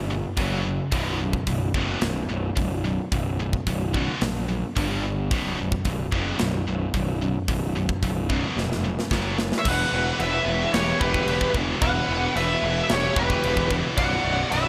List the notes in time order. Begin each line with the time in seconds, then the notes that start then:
Already playing: G1
0.10 B1 F#2
0.37 F#1 F#2 C#3 F#3, kick, open hi-hat
0.65 F#2 C#3
0.91 B0 B1 F#2 B2, kick, open hi-hat
1.20 B1 F#2
1.33 kick
1.47 B0 B1 F#2, kick, open hi-hat
1.74 F#1 B1 F#2 B2, kick
2.01 B0 B1 F#2, snare, open hi-hat
2.29 B0 B1 F#2
2.56 B0 B1 F#2, kick, open hi-hat
2.84 B1 F#2
3.12 B0 B1 F#2, kick, open hi-hat
3.39 B1 F#2
3.53 kick
3.67 B0 B1 F#2, kick, open hi-hat
3.93 B1 F#2 B2, kick
4.21 A#1 B1 F#2, snare, open hi-hat
4.49 B1 F#2
4.75 G1 G2 D3 G3, kick, open hi-hat
5.05 G2 D3
5.31 B0 B1 F#2 B2, kick, open hi-hat
5.58 B1 F#2
5.72 kick
5.85 B0 B1 F#2, kick, open hi-hat
6.12 F#1 B1 F#2 B2, kick
6.39 B0 B1 F#2, snare, open hi-hat
6.67 B0 B1 F#2
6.94 B0 B1 F#2, kick, open hi-hat
7.21 B1 F#2
7.48 B0 B1 F#2, kick, open hi-hat
7.75 B1 F#2
7.89 kick
8.03 B0 B1 F#2, kick, open hi-hat
8.29 B1 F#2 B2, kick
8.57 F1 B1 F#2, snare
8.72 snare
8.84 B1 F#2
8.99 snare
9.11 F#1 F#2 C#3 F#3, kick, snare
9.38 F#2 C#3, snare
9.52 snare
9.59 C#5 E5
9.65 E1 E2 B2 E3 B4 F#5, kick, crash
9.92 E1 E2 B2 E3
10.19 E1 E2 B2 E3 B4 E5, crash
10.46 E1 E2 B2 E3
10.73 E1 E2 B2 E3 G4 C#5, snare, crash
10.99 E1 E2 B2 E3 G4 B4, kick
11.14 kick
11.27 E1 E2 B2 E3, crash
11.41 kick
11.54 E1 E2 B2 E3, kick
11.82 E1 E2 B2 E3 B4 F#5, kick, crash
12.08 E1 E2 B2 E3
12.36 E1 E2 B2 E3 B4 E5, crash
12.63 E1 E2 B2 E3
12.89 E1 E2 B2 E3 G4 C#5, snare, crash
13.16 E1 E2 B2 E3 G4 B4, kick
13.30 kick
13.43 E1 E2 B2 E3, crash
13.57 kick
13.71 E2 B2 E3, kick
13.97 B0 B1 F#2 B2 D5 F#5, kick, crash
14.24 B0 B1 F#2 B2
14.51 B0 B1 F#2 B2 B4 E5, crash